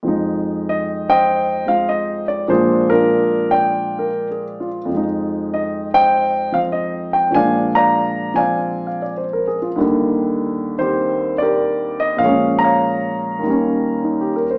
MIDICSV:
0, 0, Header, 1, 2, 480
1, 0, Start_track
1, 0, Key_signature, -3, "major"
1, 0, Tempo, 608519
1, 35, Time_signature, 4, 2, 24, 8
1, 11503, End_track
2, 0, Start_track
2, 0, Title_t, "Grand piano"
2, 0, Program_c, 0, 0
2, 22, Note_on_c, 0, 41, 39
2, 35, Note_on_c, 0, 53, 36
2, 51, Note_on_c, 0, 56, 39
2, 63, Note_on_c, 0, 63, 45
2, 546, Note_on_c, 0, 75, 68
2, 853, Note_off_c, 0, 75, 0
2, 862, Note_on_c, 0, 72, 57
2, 864, Note_on_c, 0, 75, 59
2, 865, Note_on_c, 0, 79, 79
2, 1298, Note_off_c, 0, 56, 0
2, 1310, Note_on_c, 0, 56, 33
2, 1317, Note_on_c, 0, 60, 30
2, 1326, Note_on_c, 0, 77, 67
2, 1328, Note_on_c, 0, 65, 40
2, 1342, Note_off_c, 0, 79, 0
2, 1476, Note_off_c, 0, 75, 0
2, 1484, Note_off_c, 0, 77, 0
2, 1488, Note_on_c, 0, 75, 65
2, 1775, Note_off_c, 0, 72, 0
2, 1778, Note_off_c, 0, 75, 0
2, 1799, Note_on_c, 0, 74, 63
2, 1945, Note_off_c, 0, 41, 0
2, 1945, Note_off_c, 0, 53, 0
2, 1945, Note_off_c, 0, 74, 0
2, 1948, Note_off_c, 0, 56, 0
2, 1954, Note_off_c, 0, 60, 0
2, 1954, Note_on_c, 0, 46, 49
2, 1957, Note_on_c, 0, 53, 43
2, 1960, Note_off_c, 0, 65, 0
2, 1960, Note_on_c, 0, 56, 45
2, 1965, Note_off_c, 0, 63, 0
2, 1965, Note_on_c, 0, 62, 53
2, 1969, Note_on_c, 0, 72, 69
2, 1983, Note_on_c, 0, 65, 50
2, 1983, Note_on_c, 0, 68, 51
2, 2284, Note_on_c, 0, 70, 78
2, 2285, Note_off_c, 0, 65, 0
2, 2289, Note_off_c, 0, 72, 0
2, 2290, Note_off_c, 0, 62, 0
2, 2297, Note_on_c, 0, 65, 45
2, 2302, Note_on_c, 0, 62, 45
2, 2769, Note_on_c, 0, 79, 73
2, 2771, Note_off_c, 0, 70, 0
2, 2777, Note_on_c, 0, 74, 50
2, 2894, Note_off_c, 0, 68, 0
2, 3145, Note_on_c, 0, 70, 37
2, 3211, Note_off_c, 0, 65, 0
2, 3213, Note_off_c, 0, 62, 0
2, 3367, Note_off_c, 0, 79, 0
2, 3400, Note_on_c, 0, 68, 35
2, 3482, Note_off_c, 0, 70, 0
2, 3630, Note_on_c, 0, 65, 42
2, 3691, Note_off_c, 0, 74, 0
2, 3766, Note_off_c, 0, 68, 0
2, 3829, Note_on_c, 0, 41, 41
2, 3844, Note_off_c, 0, 53, 0
2, 3855, Note_on_c, 0, 53, 39
2, 3870, Note_off_c, 0, 46, 0
2, 3873, Note_off_c, 0, 56, 0
2, 3888, Note_on_c, 0, 56, 36
2, 3918, Note_on_c, 0, 63, 44
2, 3964, Note_off_c, 0, 65, 0
2, 4367, Note_on_c, 0, 75, 62
2, 4656, Note_off_c, 0, 75, 0
2, 4685, Note_on_c, 0, 75, 53
2, 4686, Note_on_c, 0, 72, 53
2, 4688, Note_on_c, 0, 79, 88
2, 5132, Note_off_c, 0, 53, 0
2, 5144, Note_on_c, 0, 53, 36
2, 5157, Note_on_c, 0, 77, 65
2, 5162, Note_on_c, 0, 60, 38
2, 5172, Note_off_c, 0, 79, 0
2, 5196, Note_off_c, 0, 77, 0
2, 5291, Note_off_c, 0, 75, 0
2, 5303, Note_on_c, 0, 75, 63
2, 5605, Note_off_c, 0, 72, 0
2, 5626, Note_on_c, 0, 79, 67
2, 5635, Note_off_c, 0, 75, 0
2, 5762, Note_on_c, 0, 46, 45
2, 5763, Note_off_c, 0, 53, 0
2, 5767, Note_off_c, 0, 41, 0
2, 5775, Note_on_c, 0, 53, 39
2, 5776, Note_off_c, 0, 56, 0
2, 5788, Note_on_c, 0, 56, 38
2, 5792, Note_off_c, 0, 79, 0
2, 5794, Note_on_c, 0, 80, 76
2, 5795, Note_off_c, 0, 60, 0
2, 5804, Note_on_c, 0, 62, 48
2, 5807, Note_on_c, 0, 74, 57
2, 5809, Note_on_c, 0, 77, 55
2, 5812, Note_off_c, 0, 63, 0
2, 6089, Note_off_c, 0, 80, 0
2, 6112, Note_off_c, 0, 77, 0
2, 6114, Note_off_c, 0, 74, 0
2, 6115, Note_on_c, 0, 82, 77
2, 6124, Note_on_c, 0, 77, 58
2, 6125, Note_on_c, 0, 74, 55
2, 6567, Note_off_c, 0, 53, 0
2, 6579, Note_on_c, 0, 53, 37
2, 6593, Note_off_c, 0, 77, 0
2, 6593, Note_on_c, 0, 80, 69
2, 6595, Note_off_c, 0, 74, 0
2, 6598, Note_on_c, 0, 60, 38
2, 6604, Note_on_c, 0, 77, 49
2, 6606, Note_off_c, 0, 82, 0
2, 6607, Note_on_c, 0, 74, 51
2, 6983, Note_off_c, 0, 77, 0
2, 6995, Note_on_c, 0, 77, 35
2, 7105, Note_off_c, 0, 74, 0
2, 7117, Note_on_c, 0, 74, 40
2, 7141, Note_off_c, 0, 77, 0
2, 7199, Note_off_c, 0, 80, 0
2, 7237, Note_on_c, 0, 72, 38
2, 7280, Note_off_c, 0, 74, 0
2, 7361, Note_on_c, 0, 70, 44
2, 7456, Note_off_c, 0, 72, 0
2, 7473, Note_on_c, 0, 68, 46
2, 7560, Note_off_c, 0, 70, 0
2, 7588, Note_on_c, 0, 65, 41
2, 7620, Note_off_c, 0, 68, 0
2, 7695, Note_on_c, 0, 39, 50
2, 7696, Note_off_c, 0, 46, 0
2, 7705, Note_off_c, 0, 53, 0
2, 7706, Note_on_c, 0, 51, 43
2, 7709, Note_off_c, 0, 56, 0
2, 7714, Note_off_c, 0, 60, 0
2, 7717, Note_off_c, 0, 62, 0
2, 7719, Note_on_c, 0, 55, 45
2, 7732, Note_on_c, 0, 50, 57
2, 7756, Note_off_c, 0, 65, 0
2, 8493, Note_off_c, 0, 51, 0
2, 8504, Note_on_c, 0, 51, 36
2, 8508, Note_on_c, 0, 72, 69
2, 8526, Note_on_c, 0, 60, 41
2, 8526, Note_on_c, 0, 67, 49
2, 8958, Note_off_c, 0, 72, 0
2, 8979, Note_on_c, 0, 74, 70
2, 8994, Note_off_c, 0, 67, 0
2, 9006, Note_on_c, 0, 67, 51
2, 9012, Note_on_c, 0, 70, 51
2, 9464, Note_on_c, 0, 75, 73
2, 9481, Note_off_c, 0, 74, 0
2, 9598, Note_on_c, 0, 46, 45
2, 9608, Note_off_c, 0, 67, 0
2, 9611, Note_off_c, 0, 70, 0
2, 9611, Note_on_c, 0, 77, 78
2, 9625, Note_off_c, 0, 39, 0
2, 9625, Note_on_c, 0, 53, 43
2, 9630, Note_off_c, 0, 51, 0
2, 9633, Note_off_c, 0, 75, 0
2, 9637, Note_off_c, 0, 55, 0
2, 9640, Note_off_c, 0, 60, 0
2, 9644, Note_off_c, 0, 50, 0
2, 9654, Note_on_c, 0, 73, 60
2, 9657, Note_on_c, 0, 56, 41
2, 9657, Note_on_c, 0, 68, 54
2, 9683, Note_on_c, 0, 61, 52
2, 9928, Note_on_c, 0, 82, 75
2, 9953, Note_off_c, 0, 77, 0
2, 9960, Note_off_c, 0, 73, 0
2, 9972, Note_on_c, 0, 73, 59
2, 9973, Note_on_c, 0, 77, 54
2, 10562, Note_on_c, 0, 39, 41
2, 10576, Note_off_c, 0, 68, 0
2, 10577, Note_off_c, 0, 46, 0
2, 10591, Note_off_c, 0, 53, 0
2, 10594, Note_on_c, 0, 51, 39
2, 10607, Note_off_c, 0, 56, 0
2, 10620, Note_off_c, 0, 61, 0
2, 10624, Note_on_c, 0, 55, 37
2, 10650, Note_on_c, 0, 61, 45
2, 11077, Note_on_c, 0, 63, 36
2, 11208, Note_on_c, 0, 67, 42
2, 11300, Note_off_c, 0, 63, 0
2, 11326, Note_on_c, 0, 70, 46
2, 11353, Note_off_c, 0, 82, 0
2, 11375, Note_off_c, 0, 73, 0
2, 11376, Note_off_c, 0, 77, 0
2, 11408, Note_off_c, 0, 67, 0
2, 11442, Note_on_c, 0, 72, 47
2, 11471, Note_off_c, 0, 70, 0
2, 11503, Note_off_c, 0, 39, 0
2, 11503, Note_off_c, 0, 51, 0
2, 11503, Note_off_c, 0, 55, 0
2, 11503, Note_off_c, 0, 61, 0
2, 11503, Note_off_c, 0, 72, 0
2, 11503, End_track
0, 0, End_of_file